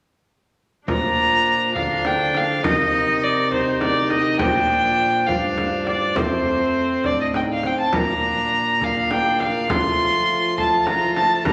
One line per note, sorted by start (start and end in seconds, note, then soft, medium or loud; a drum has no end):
0.88 1.72 A#2 medium
0.88 1.72 F3 medium
0.88 1.72 D4 soft
0.88 1.73 A#5 medium
0.88 frame drum medium
1.75 2.66 D3 medium
1.75 2.66 F3 medium
1.75 2.64 D4 medium
1.75 2.08 F5 medium
1.75 frame drum soft
2.05 2.38 G5 medium
2.05 frame drum soft
2.35 2.65 F5 medium
2.35 frame drum soft
2.63 4.40 C3 medium
2.63 3.52 D#3 medium
2.63 3.51 D#4 medium
2.63 3.25 D#5 medium
2.63 frame drum medium
3.23 3.52 D5 medium
3.52 4.40 D#3 medium
3.52 4.41 D#4 medium
3.52 3.81 C5 medium
3.52 frame drum soft
3.81 4.10 D5 medium
3.81 frame drum soft
4.10 4.39 D#5 medium
4.10 frame drum soft
4.39 5.30 A#2 medium
4.39 5.27 F3 medium
4.39 5.28 D4 medium
4.39 5.28 G5 medium
4.39 frame drum medium
5.27 6.16 G2 medium
5.27 6.18 F3 medium
5.27 6.17 D4 medium
5.27 5.86 F5 medium
5.27 frame drum soft
5.58 frame drum soft
5.87 6.18 D5 medium
5.87 frame drum soft
6.16 6.89 F2 medium
6.16 6.99 A3 soft
6.16 7.74 C4 medium
6.16 7.07 C5 medium
6.16 frame drum medium
7.04 7.64 A2 soft
7.04 7.36 D4 medium
7.04 7.20 D5 medium
7.04 frame drum soft
7.21 7.27 D#5 medium
7.34 7.65 D#4 soft
7.34 7.41 G5 medium
7.34 frame drum soft
7.53 7.68 F5 medium
7.63 7.93 C4 soft
7.63 7.80 G5 medium
7.63 frame drum soft
7.81 7.94 A5 medium
7.93 9.67 A#2 medium
7.93 8.65 A#3 medium
7.93 8.78 D4 medium
7.93 8.85 A#5 medium
7.93 frame drum medium
8.80 9.73 A#3 soft
8.80 9.70 D4 medium
8.80 9.13 F5 medium
8.80 frame drum soft
9.11 9.41 G5 medium
9.11 frame drum soft
9.40 9.72 F5 medium
9.40 frame drum soft
9.69 11.47 F3 medium
9.69 10.58 A3 medium
9.69 10.58 F4 medium
9.69 10.59 C6 medium
9.69 frame drum medium
10.58 11.48 A3 medium
10.58 11.46 F4 medium
10.58 10.87 A5 medium
10.58 frame drum soft
10.87 11.16 A#5 medium
10.87 frame drum soft
11.16 11.46 A5 medium
11.16 frame drum soft
11.45 11.53 D#3 medium
11.45 11.53 A#3 medium
11.45 11.53 G4 medium
11.45 11.53 A#5 medium
11.45 frame drum medium